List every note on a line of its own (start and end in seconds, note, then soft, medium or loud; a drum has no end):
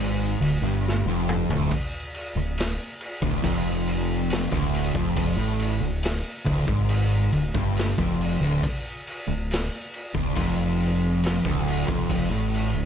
0.00 0.38 G#1 loud
0.00 0.41 G#2 loud
0.40 0.61 D1 medium
0.40 0.63 D2 medium
0.40 crash medium
0.61 1.03 G1 loud
0.61 1.05 G2 loud
0.88 snare medium
1.05 1.46 F1 loud
1.05 1.49 F2 loud
1.29 mid tom loud
1.49 1.70 D1 loud
1.49 1.70 D2 loud
1.49 floor tom loud
1.71 kick loud
1.71 crash medium
2.14 crash medium
2.35 2.76 D1 medium
2.35 2.71 D2 medium
2.58 snare loud
2.58 crash medium
3.01 crash medium
3.22 3.42 D1 loud
3.22 3.43 D2 loud
3.22 kick loud
3.43 4.48 F1 loud
3.43 4.51 F2 loud
3.43 kick loud
3.43 crash medium
3.87 crash medium
4.30 snare loud
4.30 crash loud
4.51 4.92 D1 medium
4.51 4.94 D2 loud
4.51 kick loud
4.55 snare soft
4.74 crash medium
4.95 5.35 F1 loud
4.95 5.37 F2 loud
4.95 kick loud
5.17 kick loud
5.17 crash loud
5.37 5.78 A1 loud
5.37 5.80 A2 loud
5.59 crash medium
5.80 6.21 D1 medium
5.80 6.16 D2 medium
6.03 snare loud
6.03 crash loud
6.45 6.67 D1 loud
6.45 6.66 D2 loud
6.45 kick loud
6.45 crash medium
6.67 7.29 G#1 loud
6.67 7.31 G#2 loud
6.67 kick loud
6.89 crash medium
7.32 7.53 D1 medium
7.32 7.54 D2 medium
7.32 crash medium
7.55 7.95 G1 loud
7.55 7.97 G2 loud
7.55 kick loud
7.77 snare loud
7.77 crash medium
7.98 8.38 F1 loud
7.98 8.40 F2 loud
7.98 kick loud
8.21 crash medium
8.40 8.61 D1 loud
8.40 8.61 D2 loud
8.63 kick loud
8.63 crash medium
9.07 crash medium
9.28 9.68 D1 medium
9.28 9.63 D2 medium
9.51 snare loud
9.51 crash medium
9.94 crash medium
10.14 10.34 D1 medium
10.14 10.35 D2 loud
10.14 kick loud
10.36 11.40 F1 loud
10.36 11.43 F2 loud
10.36 kick loud
10.36 crash medium
10.80 crash medium
11.23 snare loud
11.23 crash loud
11.45 11.85 D1 loud
11.45 11.87 D2 loud
11.45 kick loud
11.49 snare soft
11.68 crash medium
11.88 12.28 F1 loud
11.88 12.30 F2 loud
11.88 kick loud
12.10 kick loud
12.10 crash medium
12.30 12.71 A1 loud
12.30 12.73 A2 loud
12.54 crash medium
12.74 12.85 D1 medium
12.74 12.85 D2 medium